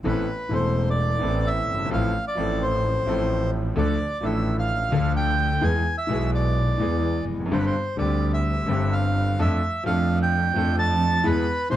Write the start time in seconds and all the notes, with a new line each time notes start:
0.04 A1 A2 E3 B3 C4 A4 B4
0.49 E1 E2 E3 A3 C4 A4
0.54 C5
0.90 D5
1.19 A1 A2 E3 B3 C4 A4
1.47 E5
1.68 G1
1.75 F#1
1.79 G1
1.85 G#1
1.91 A1 A2 F3 A3 C4 A4 F5
2.28 D5
2.35 A1 A2 F3 A3 C4
2.39 A4
2.63 C5
3.06 A1 A2 F3 A3 C4 A4
3.76 D2 D3 F3 A3 D4 A4 D5
4.21 A1 A2 F3 A3 D4 A4
4.25 E5
4.59 F5
4.90 D2 D3 F3 A3 D4
4.95 A4
5.16 G5
5.61 E2 E3 G#3 B3 G#4 G#5
5.98 E5
6.07 B1 B2 E3 G#3 B3
6.11 G#4
6.35 D5
6.79 E2 E3 G#3 B3 G#4
7.28 F1
7.34 E2
7.40 F2
7.46 F#2
7.51 G1 G2 D3 G3 C4 G4 C5
7.59 B4
7.66 C5
7.97 D2 D3 G3 C4 D5
8.01 G4
8.34 E5
8.66 G1 G2 D3 G3 C4
8.71 G4
8.93 F5
9.39 F2 F3 A3 D4 A4 E5
9.84 F2 F3 A3 D4 A4 F5
10.23 G5
10.54 F2 F3 A3 D4
10.58 A4
10.79 A5
11.24 E2 E3 G#3 B3 G#4 B4
11.70 B1 B2 E3 G#3 C5